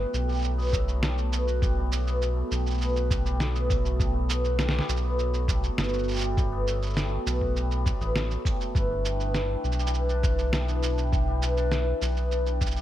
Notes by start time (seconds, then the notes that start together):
Already playing: F#3 G3 A3 B3 C#4 E4 F#4 A4
0.00 F#4
0.13 B1 G3, cabasa
0.28 G3, cabasa
0.32 cabasa
0.34 cabasa
0.36 cabasa
0.39 cabasa
0.41 F#3, cabasa
0.44 cabasa
0.58 B3, cabasa
0.61 cabasa
0.64 cabasa
0.66 cabasa
0.68 cabasa
0.71 F#3, kick, cabasa
0.73 cabasa
0.87 A3, cabasa
1.02 G3, snare, cabasa
1.17 A3, cabasa
1.32 B3, cabasa
1.47 F#4, cabasa
1.62 G3, kick, cabasa
1.77 G3
1.91 F#3, cabasa
2.07 B3, cabasa
2.21 F#3, cabasa
2.36 A3
2.51 B1 G3, cabasa
2.66 A3, cabasa
2.70 cabasa
2.74 cabasa
2.78 B3, cabasa
2.81 cabasa
2.85 cabasa
2.89 cabasa
2.92 F#4, cabasa
2.96 cabasa
3.10 G3, kick, cabasa
3.25 G3, cabasa
3.40 F#3, snare, cabasa
3.55 B3, cabasa
3.70 F#3, kick, cabasa
3.85 A3, cabasa
3.99 G3, kick, cabasa
4.14 A3
4.29 B3, cabasa
4.44 F#4, cabasa
4.59 G3, snare, cabasa
4.69 snare
4.74 G3
4.79 snare
4.89 B1 F#3, cabasa
4.97 cabasa
5.04 B3
5.18 F#3, cabasa
5.33 A3, cabasa
5.48 G3, kick, cabasa
5.63 A3, cabasa
5.78 G1 B3, snare, cabasa
5.84 cabasa
5.89 cabasa
5.93 F#4, cabasa
5.99 cabasa
6.03 cabasa
6.08 G3, cabasa
6.11 cabasa
6.14 cabasa
6.16 cabasa
6.18 cabasa
6.21 G3, cabasa
6.23 cabasa
6.37 F#3, kick, cabasa
6.52 B3
6.67 F#3, cabasa
6.82 A3, cabasa
6.86 cabasa
6.90 cabasa
6.93 G3, snare, cabasa
6.97 cabasa
7.01 cabasa
7.08 A3, cabasa
7.26 B1 B3, cabasa
7.41 F#4, kick
7.56 G3, cabasa
7.71 G3, cabasa
7.86 F#3, kick, cabasa
8.01 A1 B3, cabasa
8.16 F#3, snare, cabasa
8.31 A3, cabasa
8.45 G3, kick, cabasa
8.60 A3, cabasa
8.75 G1 E3 D4 E4 B4, kick, cabasa
8.90 D4
9.05 G3, cabasa
9.20 B3, cabasa
9.34 D4, snare, cabasa
9.49 G4
9.64 B1 G3, cabasa
9.72 cabasa
9.79 G3, cabasa
9.87 cabasa
9.94 E3, cabasa
10.09 D4, cabasa
10.23 E3, kick, cabasa
10.38 D4, cabasa
10.53 G3, snare, cabasa
10.68 B3, cabasa
10.83 D4, cabasa
10.98 G4, cabasa
11.12 G3, kick, cabasa
11.28 G3
11.42 E3, cabasa
11.57 D4, cabasa
11.71 E3, snare, cabasa
11.87 D4
12.02 B1 G3, cabasa
12.17 B3, cabasa
12.31 D4, cabasa
12.46 G4, cabasa
12.61 G3, kick, cabasa
12.66 cabasa
12.71 cabasa
12.76 G3, cabasa